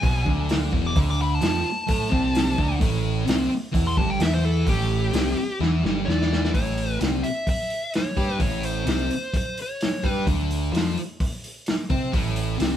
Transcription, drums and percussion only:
0.03 kick, open hi-hat
0.26 kick
0.49 snare, open hi-hat
0.73 kick
0.96 kick, open hi-hat
1.41 snare, open hi-hat
1.88 kick, open hi-hat
2.12 kick
2.35 snare, open hi-hat
2.58 kick
2.81 kick, open hi-hat
3.27 snare, open hi-hat
3.74 kick, open hi-hat
3.97 kick
4.20 snare, open hi-hat
4.67 kick, open hi-hat
5.13 snare, open hi-hat
5.62 snare
5.85 snare
6.09 snare
6.21 snare
6.33 snare
6.45 snare
6.54 kick, open hi-hat
6.78 open hi-hat
7.01 snare, open hi-hat
7.24 open hi-hat
7.47 kick, open hi-hat
7.70 open hi-hat
7.94 snare, open hi-hat
8.17 kick, open hi-hat
8.40 kick, open hi-hat
8.63 open hi-hat
8.87 snare, open hi-hat
9.10 open hi-hat
9.34 kick, open hi-hat
9.57 open hi-hat
9.81 snare, open hi-hat
10.04 kick, open hi-hat
10.27 kick, open hi-hat
10.51 open hi-hat
10.75 snare, open hi-hat
10.97 open hi-hat
11.20 kick, open hi-hat
11.44 open hi-hat
11.66 snare, open hi-hat
11.90 kick, open hi-hat
12.13 kick, open hi-hat
12.36 open hi-hat
12.60 snare, open hi-hat

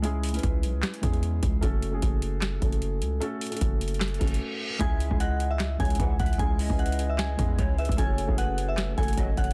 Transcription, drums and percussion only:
0.04 closed hi-hat
0.24 closed hi-hat, open hi-hat
0.29 closed hi-hat
0.34 closed hi-hat
0.39 closed hi-hat
0.43 kick, closed hi-hat
0.63 closed hi-hat
0.83 snare, clap, closed hi-hat
0.94 closed hi-hat
1.03 kick, closed hi-hat
1.13 closed hi-hat
1.23 closed hi-hat
1.43 kick, closed hi-hat
1.63 kick, closed hi-hat
1.82 closed hi-hat
2.02 kick, closed hi-hat
2.22 closed hi-hat
2.42 snare, clap, closed hi-hat
2.62 kick, closed hi-hat
2.72 closed hi-hat
2.82 closed hi-hat
3.02 closed hi-hat
3.22 closed hi-hat
3.41 closed hi-hat, open hi-hat
3.47 closed hi-hat
3.52 closed hi-hat
3.57 closed hi-hat
3.61 kick, closed hi-hat
3.81 closed hi-hat
3.88 closed hi-hat
3.94 closed hi-hat
4.00 snare, clap, closed hi-hat
4.08 closed hi-hat
4.14 closed hi-hat
4.21 kick, closed hi-hat
4.28 closed hi-hat
4.34 closed hi-hat
4.80 kick, closed hi-hat
5.00 closed hi-hat
5.11 kick
5.20 closed hi-hat
5.40 closed hi-hat
5.59 snare, clap, closed hi-hat
5.80 kick, closed hi-hat
5.85 closed hi-hat
5.90 closed hi-hat
5.95 closed hi-hat
6.00 kick, closed hi-hat
6.20 kick, closed hi-hat
6.26 closed hi-hat
6.33 closed hi-hat
6.39 kick, closed hi-hat
6.59 open hi-hat
6.70 kick
6.79 closed hi-hat
6.86 closed hi-hat
6.92 closed hi-hat
6.99 closed hi-hat
7.18 snare, clap, closed hi-hat
7.39 kick, closed hi-hat
7.59 kick, closed hi-hat
7.78 closed hi-hat
7.85 kick, closed hi-hat
7.92 closed hi-hat
7.98 kick, closed hi-hat
8.18 closed hi-hat
8.29 kick
8.38 closed hi-hat
8.58 closed hi-hat
8.77 snare, clap, closed hi-hat
8.98 kick, closed hi-hat
9.03 closed hi-hat
9.08 closed hi-hat
9.13 closed hi-hat
9.17 kick, closed hi-hat
9.37 kick, closed hi-hat
9.44 closed hi-hat

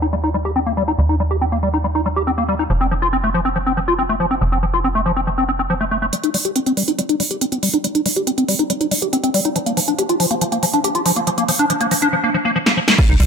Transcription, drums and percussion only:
6.13 closed hi-hat
6.24 closed hi-hat
6.34 open hi-hat
6.45 closed hi-hat
6.56 closed hi-hat
6.66 closed hi-hat
6.77 open hi-hat
6.88 closed hi-hat
6.99 closed hi-hat
7.09 closed hi-hat
7.20 open hi-hat
7.31 closed hi-hat
7.41 closed hi-hat
7.52 closed hi-hat
7.63 open hi-hat
7.74 closed hi-hat
7.84 closed hi-hat
7.95 closed hi-hat
8.06 open hi-hat
8.16 closed hi-hat
8.27 closed hi-hat
8.38 closed hi-hat
8.49 open hi-hat
8.59 closed hi-hat
8.70 closed hi-hat
8.81 closed hi-hat
8.91 open hi-hat
9.02 closed hi-hat
9.13 closed hi-hat
9.24 closed hi-hat
9.34 open hi-hat
9.45 closed hi-hat
9.56 closed hi-hat
9.66 closed hi-hat
9.77 open hi-hat
9.88 closed hi-hat
9.99 closed hi-hat
10.09 closed hi-hat
10.20 open hi-hat
10.31 closed hi-hat
10.41 closed hi-hat
10.52 closed hi-hat
10.63 open hi-hat
10.74 closed hi-hat
10.84 closed hi-hat
10.95 closed hi-hat
11.06 open hi-hat
11.16 closed hi-hat
11.27 closed hi-hat
11.38 closed hi-hat
11.48 open hi-hat
11.59 closed hi-hat
11.70 closed hi-hat
11.81 closed hi-hat
11.91 open hi-hat
12.02 closed hi-hat
12.66 snare
12.88 snare
12.98 kick, closed hi-hat, crash
13.09 closed hi-hat
13.20 open hi-hat

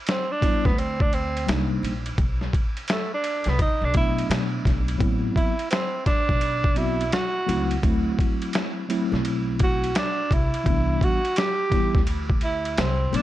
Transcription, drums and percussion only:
0.07 snare, hi-hat pedal, ride
0.42 kick, snare, ride
0.65 kick, snare
0.78 ride
1.00 kick
1.13 ride
1.37 ride
1.49 snare, hi-hat pedal, ride
1.84 ride
2.06 ride
2.18 kick, ride
2.41 snare
2.53 kick, ride
2.77 ride
2.88 snare, hi-hat pedal, ride
3.24 ride
3.44 snare, ride
3.59 kick, ride
3.94 kick, ride
4.18 ride
4.31 snare, hi-hat pedal, ride
4.65 kick, snare, ride
4.88 ride
5.00 kick, ride
5.36 kick, ride
5.59 ride
5.71 snare, hi-hat pedal, ride
6.06 kick, snare, ride
6.29 kick, snare
6.41 ride
6.64 kick
6.76 ride
7.01 ride
7.12 snare, hi-hat pedal, ride
7.49 ride
7.71 ride
7.83 kick, ride
8.19 kick, ride
8.42 ride
8.53 snare, hi-hat pedal, ride
8.90 ride
9.14 snare
9.25 ride
9.59 kick, ride
9.84 ride
9.95 snare, hi-hat pedal, ride
10.31 kick, ride
10.54 ride
10.66 kick, ride
11.01 kick, ride
11.25 ride
11.36 snare, hi-hat pedal, ride
11.72 kick, snare, ride
11.95 kick, snare
12.07 ride
12.30 kick
12.41 ride
12.65 ride
12.78 snare, hi-hat pedal, ride
13.14 ride

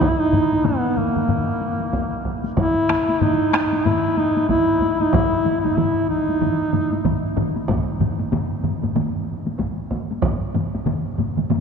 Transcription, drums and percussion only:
0.01 taiko, taiko low-mid, taiko mid, taiko high
0.33 taiko low-mid, taiko mid, taiko high
0.53 taiko high
0.64 taiko low-mid, taiko mid, taiko high
0.97 taiko low-mid, taiko mid, taiko high
1.16 taiko low-mid, taiko mid, taiko high
1.29 taiko low-mid, taiko mid, taiko high
1.61 taiko high
1.80 taiko high
1.93 taiko, taiko high
2.25 taiko, taiko high
2.44 taiko high
2.57 taiko, taiko low-mid, taiko mid, taiko high
2.89 taiko rim, taiko high
3.09 taiko high
3.21 taiko low-mid, taiko mid, taiko high
3.54 taiko rim, taiko high
3.73 taiko high
3.86 taiko low-mid, taiko mid, taiko high
4.17 taiko high
4.37 taiko high
4.49 taiko, taiko low-mid, taiko mid, taiko high
4.80 taiko, taiko high
5.01 taiko high
5.12 taiko, taiko low-mid, taiko mid, taiko high
5.45 taiko low-mid, taiko mid, taiko high
5.65 taiko low-mid, taiko mid, taiko high
5.77 taiko low-mid, taiko mid, taiko high
6.29 taiko high
6.41 taiko low-mid, taiko mid, taiko high
6.73 taiko low-mid, taiko mid, taiko high
6.92 taiko high
7.05 taiko, taiko low-mid, taiko mid, taiko high
7.37 taiko, taiko low-mid, taiko mid, taiko high
7.56 taiko high
7.68 taiko, taiko low-mid, taiko mid, taiko high
8.00 taiko low-mid, taiko mid, taiko high
8.19 taiko high
8.32 taiko low-mid, taiko mid, taiko high
8.64 taiko low-mid, taiko mid, taiko high
8.83 taiko low-mid, taiko mid, taiko high
8.96 taiko low-mid, taiko mid, taiko high
9.47 taiko high
9.59 taiko, taiko high
9.91 taiko, taiko high
10.11 taiko high
10.22 taiko, taiko low-mid, taiko mid, taiko high
10.54 taiko low-mid, taiko mid, taiko high
10.75 taiko high
10.86 taiko low-mid, taiko mid, taiko high
11.18 taiko low-mid, taiko mid, taiko high
11.37 taiko low-mid, taiko mid, taiko high
11.50 taiko low-mid, taiko mid, taiko high

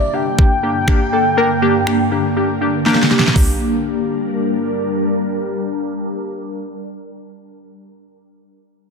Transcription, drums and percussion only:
0.39 kick
0.88 finger snap, kick
1.87 finger snap
2.86 snare
2.94 snare
3.03 snare
3.11 snare
3.19 snare
3.28 snare
3.36 kick, floor tom, open hi-hat

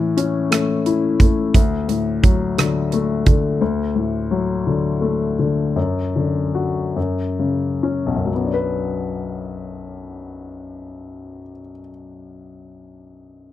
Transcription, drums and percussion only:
0.18 closed hi-hat
0.52 cross-stick, closed hi-hat
0.86 closed hi-hat
1.20 kick, closed hi-hat
1.54 kick, closed hi-hat
1.89 closed hi-hat
2.23 kick, closed hi-hat
2.58 cross-stick, closed hi-hat
2.92 closed hi-hat
3.26 kick, closed hi-hat

